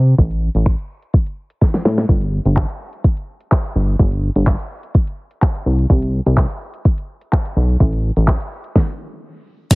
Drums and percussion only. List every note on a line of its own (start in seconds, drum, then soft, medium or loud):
0.07 closed hi-hat soft
0.18 kick loud
0.18 closed hi-hat medium
0.31 closed hi-hat medium
0.55 closed hi-hat soft
0.66 finger snap loud
0.66 kick loud
0.66 closed hi-hat medium
0.79 closed hi-hat medium
1.02 closed hi-hat soft
1.14 kick loud
1.14 closed hi-hat medium
1.27 closed hi-hat medium
1.50 closed hi-hat medium
1.61 kick loud
1.61 snare medium
1.61 closed hi-hat medium
1.74 snare medium
1.74 closed hi-hat medium
1.85 snare medium
1.98 snare medium
1.98 closed hi-hat soft
2.09 kick loud
2.09 closed hi-hat medium
2.21 closed hi-hat medium
2.45 closed hi-hat soft
2.57 kick loud
2.57 clap loud
2.57 closed hi-hat medium
2.69 closed hi-hat medium
2.93 closed hi-hat medium
3.04 kick loud
3.04 closed hi-hat medium
3.17 closed hi-hat medium
3.40 closed hi-hat medium
3.52 kick loud
3.52 clap loud
3.52 closed hi-hat medium
3.65 closed hi-hat medium
3.88 closed hi-hat soft
3.99 kick loud
3.99 closed hi-hat medium
4.12 closed hi-hat medium
4.36 closed hi-hat soft
4.47 kick loud
4.47 clap loud
4.47 closed hi-hat medium
4.60 closed hi-hat medium
4.83 closed hi-hat medium
4.94 kick loud
4.94 closed hi-hat medium
5.07 closed hi-hat soft
5.31 closed hi-hat medium
5.42 kick loud
5.42 clap loud
5.42 closed hi-hat medium
5.55 closed hi-hat medium
5.79 closed hi-hat soft
5.90 kick loud
5.90 closed hi-hat medium
6.02 closed hi-hat medium
6.26 closed hi-hat soft
6.37 kick loud
6.37 clap loud
6.37 closed hi-hat medium
6.50 closed hi-hat medium
6.74 closed hi-hat medium
6.85 kick loud
6.85 closed hi-hat medium
6.98 closed hi-hat soft
7.21 closed hi-hat medium
7.33 kick loud
7.33 clap loud
7.33 closed hi-hat medium
7.46 closed hi-hat medium
7.69 closed hi-hat soft
7.80 kick loud
7.80 closed hi-hat medium
7.93 closed hi-hat medium
8.17 closed hi-hat soft
8.28 kick loud
8.28 clap loud
8.28 closed hi-hat medium
8.41 closed hi-hat medium
8.64 closed hi-hat medium
8.76 kick loud
8.76 snare medium
9.71 kick loud
9.71 closed hi-hat medium
9.71 crash loud
9.71 shaker medium